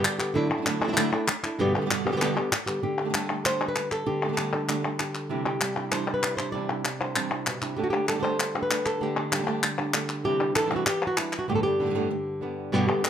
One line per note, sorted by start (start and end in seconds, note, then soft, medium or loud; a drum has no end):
0.00 0.35 D3 soft
0.00 0.19 D3 medium
0.00 0.35 G3 soft
0.00 0.35 B3 medium
0.00 0.34 G4 soft
0.04 0.19 G3 medium
0.04 0.18 G4 medium
0.04 clap loud
0.19 0.33 D3 soft
0.19 0.35 G3 soft
0.19 0.35 B3 medium
0.19 0.34 G4 medium
0.19 clap medium
0.34 0.50 D3 loud
0.34 0.50 F#3 medium
0.34 0.50 A3 loud
0.34 0.50 D4 loud
0.34 0.48 E4 loud
0.34 muted nylon-string guitar stroke medium
0.50 0.65 A3 medium
0.50 0.65 D4 medium
0.50 0.65 E4 medium
0.50 clap soft
0.57 0.61 F#3 soft
0.57 0.61 A3 soft
0.57 0.61 D4 soft
0.57 0.62 E4 soft
0.62 0.66 F#3 soft
0.62 0.66 A3 medium
0.62 0.66 D4 medium
0.62 0.66 E4 medium
0.62 muted nylon-string guitar stroke medium
0.66 0.81 D3 medium
0.66 0.82 F#3 medium
0.66 0.82 A3 medium
0.66 0.82 D4 medium
0.66 0.81 E4 medium
0.66 clap medium
0.82 0.87 F#3 soft
0.82 0.88 A3 soft
0.82 0.85 D4 soft
0.82 0.88 D4 soft
0.82 0.84 E4 soft
0.82 0.88 E4 medium
0.88 0.92 F#3 medium
0.88 0.92 A3 medium
0.88 0.93 D4 medium
0.88 0.93 E4 medium
0.93 0.97 F#3 medium
0.93 0.97 A3 medium
0.93 0.97 D4 medium
0.93 0.97 E4 medium
0.97 1.12 D3 medium
0.97 1.13 F#3 medium
0.97 1.13 A3 medium
0.97 1.13 D4 medium
0.97 1.12 E4 medium
0.97 clap loud
1.13 1.28 A3 soft
1.13 1.28 D4 soft
1.13 1.28 E4 soft
1.13 clap medium
1.28 muted nylon-string guitar stroke medium
1.28 clap loud
1.44 1.60 A3 soft
1.44 1.59 D4 medium
1.44 1.59 E4 medium
1.44 clap medium
1.59 1.74 G2 medium
1.59 1.74 B2 medium
1.59 1.74 D3 loud
1.59 1.75 G3 medium
1.59 1.75 B3 medium
1.59 1.74 G4 loud
1.59 muted nylon-string guitar stroke medium
1.77 1.80 B2 soft
1.77 1.80 D3 soft
1.77 1.81 G3 soft
1.77 1.81 B3 soft
1.77 1.81 G4 soft
1.81 1.85 B2 medium
1.81 1.85 D3 medium
1.81 1.85 G3 medium
1.81 1.86 B3 medium
1.81 1.86 G4 medium
1.86 1.89 B2 medium
1.86 1.90 D3 medium
1.86 1.90 G3 medium
1.86 1.90 B3 medium
1.86 1.90 G4 medium
1.90 2.05 G2 medium
1.90 2.05 B2 medium
1.90 2.05 D3 medium
1.90 2.06 G3 medium
1.90 2.05 B3 medium
1.90 2.04 G4 medium
1.90 muted nylon-string guitar stroke medium
1.90 clap medium
2.06 2.11 B2 soft
2.06 2.11 D3 soft
2.06 2.09 G3 soft
2.06 2.12 G3 soft
2.06 2.08 B3 soft
2.06 2.12 B3 soft
2.06 2.08 G4 soft
2.06 2.12 G4 soft
2.12 2.16 B2 soft
2.12 2.16 D3 medium
2.12 2.16 G3 medium
2.12 2.17 B3 medium
2.12 2.17 G4 medium
2.17 2.21 B2 medium
2.17 2.21 D3 medium
2.17 2.21 G3 medium
2.17 2.21 B3 medium
2.17 2.21 G4 medium
2.21 2.36 G2 medium
2.21 2.36 B2 medium
2.21 2.36 D3 medium
2.21 2.36 G3 medium
2.21 2.36 B3 medium
2.21 2.35 G4 medium
2.21 clap medium
2.36 2.51 D3 soft
2.36 2.51 G3 soft
2.36 2.51 B3 soft
2.36 2.51 G4 soft
2.36 clap soft
2.52 muted nylon-string guitar stroke medium
2.52 clap loud
2.66 2.81 D3 soft
2.66 2.83 G3 soft
2.66 2.82 B3 medium
2.66 2.82 G4 medium
2.66 clap medium
2.82 4.06 D3 medium
2.82 3.45 G4 medium
2.82 muted nylon-string guitar stroke medium
2.98 3.04 D3 soft
2.98 3.04 A3 soft
2.98 3.05 D4 soft
2.98 3.05 G4 soft
2.98 clap soft
3.05 3.08 D3 soft
3.05 3.09 A3 medium
3.05 3.09 D4 soft
3.05 3.09 G4 soft
3.10 3.13 D3 medium
3.10 3.13 A3 medium
3.10 3.14 D4 medium
3.10 3.14 G4 medium
3.14 3.29 D3 medium
3.14 4.37 G3 medium
3.14 3.29 A3 medium
3.14 3.28 D4 medium
3.14 3.28 G4 medium
3.14 3.45 A4 medium
3.14 clap medium
3.29 3.44 A3 soft
3.29 3.44 D4 soft
3.29 3.44 G4 soft
3.44 3.59 D3 medium
3.44 3.60 A3 medium
3.44 3.59 D4 medium
3.44 3.59 G4 medium
3.44 3.68 C5 loud
3.44 clap medium
3.60 3.74 A3 soft
3.60 3.75 D4 soft
3.60 3.75 G4 soft
3.68 3.91 B4 medium
3.75 muted nylon-string guitar stroke medium
3.75 clap medium
3.92 4.38 A4 medium
3.92 clap medium
4.07 5.61 D3 medium
4.07 4.69 G4 medium
4.07 muted nylon-string guitar stroke medium
4.24 4.27 D3 soft
4.24 4.27 A3 soft
4.24 4.28 D4 soft
4.24 4.28 G4 soft
4.28 4.32 D3 medium
4.28 4.32 A3 medium
4.28 4.32 D4 medium
4.28 4.33 G4 medium
4.33 4.36 D3 medium
4.33 4.36 A3 medium
4.33 4.37 D4 medium
4.33 4.37 G4 medium
4.37 4.52 D3 medium
4.37 5.61 G3 medium
4.37 4.52 A3 medium
4.37 4.53 D4 medium
4.37 4.52 G4 medium
4.37 clap medium
4.53 4.67 A3 soft
4.53 4.68 D4 soft
4.53 4.68 G4 soft
4.53 5.00 A4 soft
4.53 clap medium
4.68 4.83 D3 medium
4.68 4.83 A3 medium
4.68 4.83 D4 medium
4.68 4.82 G4 medium
4.68 clap medium
4.83 4.98 A3 soft
4.83 4.98 D4 soft
4.83 4.98 G4 soft
4.99 5.30 G4 medium
4.99 5.29 A4 soft
4.99 muted nylon-string guitar stroke medium
4.99 clap medium
5.15 clap medium
5.29 5.45 C3 medium
5.29 5.45 E3 medium
5.29 5.45 G3 medium
5.29 5.45 D4 medium
5.29 5.44 E4 medium
5.29 5.45 G4 medium
5.45 5.60 G3 soft
5.45 5.61 D4 soft
5.45 5.60 E4 soft
5.45 5.76 G4 medium
5.61 6.85 G3 medium
5.61 5.91 A4 medium
5.61 muted nylon-string guitar stroke medium
5.61 clap medium
5.76 5.91 G3 soft
5.76 5.92 D4 soft
5.76 5.91 E4 soft
5.91 6.07 C3 medium
5.91 6.07 E3 medium
5.91 6.07 G3 medium
5.91 6.06 D4 medium
5.91 6.06 E4 medium
5.91 6.13 C5 loud
5.91 clap medium
6.07 6.22 G3 soft
6.07 6.22 D4 soft
6.07 6.22 E4 soft
6.14 6.37 B4 medium
6.23 6.57 D4 medium
6.23 6.53 E4 soft
6.23 muted nylon-string guitar stroke medium
6.23 clap medium
6.37 6.53 G3 soft
6.37 6.54 D4 soft
6.37 6.53 E4 medium
6.37 6.52 C5 loud
6.37 clap medium
6.52 6.68 C3 medium
6.52 6.69 E3 medium
6.52 6.69 G3 medium
6.52 6.69 D4 medium
6.52 6.67 E4 medium
6.52 6.99 D5 loud
6.69 6.84 G3 soft
6.69 6.84 D4 soft
6.69 6.84 E4 soft
6.85 8.08 G3 medium
6.85 muted nylon-string guitar stroke soft
6.85 clap medium
7.00 7.15 G3 soft
7.00 7.15 D4 soft
7.00 7.15 E4 soft
7.00 7.76 C5 soft
7.15 7.30 C3 medium
7.15 7.30 E3 medium
7.15 7.31 G3 medium
7.15 7.31 D4 medium
7.15 7.29 E4 medium
7.15 clap medium
7.31 7.46 G3 soft
7.31 7.46 D4 soft
7.31 7.46 E4 soft
7.31 clap medium
7.46 7.61 B2 medium
7.46 muted nylon-string guitar stroke medium
7.46 clap medium
7.62 7.77 C3 medium
7.62 7.77 G3 soft
7.62 7.77 D4 soft
7.62 7.77 E4 soft
7.62 clap medium
7.78 7.92 D3 medium
7.78 7.93 A3 medium
7.78 7.92 D4 medium
7.78 7.92 G4 medium
7.84 7.90 F#4 medium
7.93 8.08 A3 soft
7.93 8.08 D4 soft
7.93 8.07 G4 soft
8.08 9.32 G3 medium
8.08 8.14 A3 soft
8.08 8.14 D4 soft
8.08 8.15 G4 soft
8.08 8.55 A4 loud
8.08 clap medium
8.15 8.18 D3 soft
8.15 8.18 A3 soft
8.15 8.19 D4 soft
8.15 8.19 G4 soft
8.19 8.22 D3 medium
8.19 8.23 A3 medium
8.19 8.23 D4 medium
8.19 8.24 G4 medium
8.19 8.62 C5 loud
8.23 8.37 D3 medium
8.23 8.38 A3 medium
8.23 8.38 D4 medium
8.23 8.38 G4 medium
8.23 clap soft
8.39 muted nylon-string guitar stroke medium
8.39 clap medium
8.54 8.69 A3 soft
8.54 8.70 D4 soft
8.54 8.69 G4 soft
8.63 9.17 B4 medium
8.70 8.99 D3 soft
8.70 9.00 A3 soft
8.70 9.01 D4 medium
8.70 9.01 G4 medium
8.70 clap medium
8.86 9.03 A4 loud
8.86 clap medium
9.01 9.16 D3 medium
9.01 9.16 A3 medium
9.01 9.16 D4 medium
9.01 9.15 G4 medium
9.16 9.32 A3 soft
9.16 9.31 D4 medium
9.16 9.30 G4 soft
9.31 9.37 D3 soft
9.31 11.49 G3 medium
9.31 9.37 A3 soft
9.31 9.34 D4 soft
9.31 9.38 D4 soft
9.31 9.34 G4 soft
9.31 9.38 G4 soft
9.31 clap medium
9.38 9.41 D3 medium
9.38 9.42 A3 medium
9.38 9.42 D4 soft
9.38 9.43 G4 medium
9.43 9.46 D3 medium
9.43 9.46 A3 medium
9.43 9.47 D4 medium
9.43 9.47 G4 medium
9.47 9.62 D3 medium
9.47 9.62 A3 medium
9.47 9.62 D4 medium
9.47 9.62 G4 medium
9.47 10.25 D5 soft
9.47 clap medium
9.63 muted nylon-string guitar stroke medium
9.63 clap medium
9.78 9.93 A3 soft
9.78 9.93 D4 soft
9.78 9.93 G4 soft
9.78 clap medium
9.94 10.24 D3 soft
9.94 10.24 A3 medium
9.94 10.25 D4 medium
9.94 10.25 G4 medium
9.94 clap medium
10.09 clap medium
10.24 10.39 C3 medium
10.24 10.40 E3 medium
10.24 10.40 G3 medium
10.24 10.39 D4 medium
10.24 10.39 E4 medium
10.24 10.56 G4 loud
10.40 10.55 G3 soft
10.40 10.54 D4 soft
10.40 10.53 E4 soft
10.55 11.47 E3 medium
10.55 10.61 G3 soft
10.55 10.61 D4 soft
10.55 10.61 E4 soft
10.55 10.76 A4 loud
10.55 clap medium
10.61 10.65 E3 soft
10.61 10.65 G3 soft
10.61 10.65 D4 soft
10.61 10.66 E4 soft
10.66 10.70 E3 medium
10.66 10.70 G3 medium
10.66 10.70 D4 medium
10.66 10.70 E4 medium
10.71 10.85 C3 medium
10.71 10.85 E3 medium
10.71 10.85 G3 medium
10.71 10.85 D4 medium
10.71 10.86 E4 medium
10.76 10.86 F#4 medium
10.86 11.07 G4 loud
10.86 muted nylon-string guitar stroke medium
10.86 clap medium
11.02 clap medium
11.07 11.18 F#4 medium
11.17 11.48 E3 soft
11.17 11.48 G3 medium
11.17 11.48 D4 medium
11.17 11.48 E4 medium
11.17 clap medium
11.33 clap medium
11.39 11.49 F#4 loud
11.48 11.63 G2 medium
11.48 11.63 A2 medium
11.48 11.64 D3 medium
11.48 11.64 G3 medium
11.48 11.63 B3 medium
11.48 11.94 D4 medium
11.48 11.63 G4 medium
11.55 11.63 A4 medium
11.63 11.80 D3 soft
11.63 11.79 G3 soft
11.63 11.79 B3 soft
11.63 12.73 G4 loud
11.79 11.84 A2 soft
11.79 11.85 D3 soft
11.79 11.83 G3 soft
11.79 11.82 B3 soft
11.79 11.85 B3 soft
11.79 11.81 G4 soft
11.79 11.86 G4 soft
11.86 11.89 A2 soft
11.86 11.89 D3 medium
11.86 11.90 G3 medium
11.86 11.90 B3 medium
11.86 11.90 G4 medium
11.90 11.94 A2 medium
11.90 11.94 D3 medium
11.90 11.94 G3 medium
11.90 11.94 B3 medium
11.90 11.95 G4 medium
11.95 12.09 G2 medium
11.95 12.09 A2 medium
11.95 12.09 D3 medium
11.95 12.10 G3 medium
11.95 12.10 B3 medium
11.95 12.42 D4 medium
11.95 12.10 G4 medium
12.10 muted nylon-string guitar stroke medium
12.41 12.72 D3 soft
12.41 12.72 G3 soft
12.41 12.72 B3 medium
12.41 12.72 D4 soft
12.41 12.73 G4 medium
12.72 12.87 G2 medium
12.72 12.88 B2 medium
12.72 12.88 D3 medium
12.72 12.88 G3 medium
12.72 12.87 B3 medium
12.72 12.87 G4 medium
12.88 13.02 D3 soft
12.88 13.03 G3 soft
12.88 13.03 B3 medium
12.88 13.03 G4 soft
13.03 13.10 D3 soft
13.03 13.10 G3 soft
13.03 13.10 B3 soft
13.03 13.10 G4 soft
13.03 clap medium